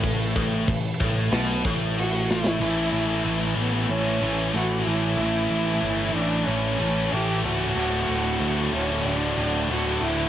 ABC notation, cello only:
X:1
M:4/4
L:1/8
Q:1/4=93
K:Amix
V:1 name="Cello"
z6 F E- | E3 B, C2 F E- | E3 D C2 G F- | F3 C D2 F E |]